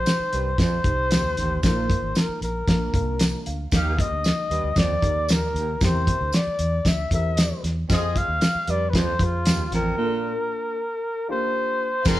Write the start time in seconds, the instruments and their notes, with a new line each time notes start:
Already playing: upright piano C4 D#4 G4, flugelhorn C5
0.06 snare, closed hi-hat, tambourine
0.19 muted fingered electric bass stroke
0.33 fingered electric bass C2, baritone saxophone G2, closed hi-hat
0.58 fingered electric bass A#1, baritone saxophone F2, flugelhorn C5, kick, snare, closed hi-hat, tambourine
0.84 fingered electric bass C2, upright piano C4 D#4 G4 C5, kick, closed hi-hat
1.11 baritone saxophone D#2, snare, closed hi-hat, tambourine
1.36 fingered electric bass A1, baritone saxophone D#2, snare, closed hi-hat
1.63 fingered electric bass A#1, baritone saxophone A#2, upright piano A#3 D#4 F4 A#4, flugelhorn C5, kick, snare, closed hi-hat, tambourine
1.90 kick, closed hi-hat
2.02 fingered electric bass G#1
2.15 flugelhorn A#4, snare, closed hi-hat, tambourine
2.29 muted fingered electric bass stroke
2.41 fingered electric bass A#1, flugelhorn A#4, closed hi-hat
2.68 fingered electric bass A#1, upright piano A#3 D4 F4 A#4, kick, snare, closed hi-hat, tambourine
2.93 fingered electric bass C2, upright piano A#3 D4 F4 A#4, kick, closed hi-hat
3.19 upright piano A#5, snare, closed hi-hat, tambourine
3.46 fingered electric bass D2, upright piano F5, closed hi-hat
3.71 fingered electric bass D#2, baritone saxophone D#2, upright piano A#3 D#4 G4 A#4, horn section A#3 D#4 G4, flugelhorn F5, kick, snare, closed hi-hat, tambourine
3.99 flugelhorn D#5, kick, closed hi-hat
4.11 fingered electric bass D2
4.24 snare, closed hi-hat, tambourine
4.50 fingered electric bass D#2, baritone saxophone G2, closed hi-hat
4.64 fingered electric bass D2
4.76 fingered electric bass D#2, baritone saxophone F2, flugelhorn D5, kick, snare, closed hi-hat, tambourine
5.02 fingered electric bass D#2, upright piano A#3 D#4 G4 A#4, kick, closed hi-hat
5.29 baritone saxophone D#2, flugelhorn A#4, snare, closed hi-hat, tambourine
5.54 fingered electric bass D#2, baritone saxophone D#2, closed hi-hat
5.81 fingered electric bass E2, baritone saxophone C3, upright piano C4 E4 G4 A#4, flugelhorn C5, kick, snare, closed hi-hat, tambourine
6.07 kick, closed hi-hat
6.21 fingered electric bass D2
6.33 flugelhorn D5, snare, closed hi-hat, tambourine
6.47 muted fingered electric bass stroke
6.59 fingered electric bass E2, closed hi-hat
6.85 fingered electric bass D2, flugelhorn E5, kick, snare, closed hi-hat, tambourine
7.11 fingered electric bass E2, upright piano C4 E4 G4 A#4, flugelhorn E5, kick, closed hi-hat
7.37 snare, closed hi-hat, tambourine
7.64 fingered electric bass E2, snare, closed hi-hat
7.89 baritone saxophone F2, fingered electric bass F2, horn section C4 F4 G#4, upright piano C4 F4 G4 C5, flugelhorn D#5, kick, snare, closed hi-hat, tambourine
7.97 upright piano G#4
8.16 flugelhorn F5, kick, closed hi-hat
8.28 fingered electric bass D#2
8.41 snare, closed hi-hat, tambourine
8.55 muted fingered electric bass stroke
8.67 fingered electric bass F2, baritone saxophone G2, flugelhorn D5, closed hi-hat
8.90 fingered electric bass D#2, flugelhorn B4, kick
8.94 baritone saxophone F2, flugelhorn C5, snare, closed hi-hat, tambourine
9.19 fingered electric bass F2, upright piano C4 F4 G#4 C5, kick, closed hi-hat
9.24 flugelhorn F4
9.45 baritone saxophone D#2, snare, closed hi-hat, tambourine
9.72 fingered electric bass A1, baritone saxophone F2, flugelhorn A#4, snare, closed hi-hat
9.97 baritone saxophone A#2, upright piano A#3 D4 F4 A4
10.06 upright piano A#4
11.28 upright piano A#3 D4 F4 G4, flugelhorn C5
12.05 fingered electric bass F1, baritone saxophone F2, upright piano G#3 C4 F4 G#4, string section G#4 F5 C6, flugelhorn A#4, kick, snare, crash, tambourine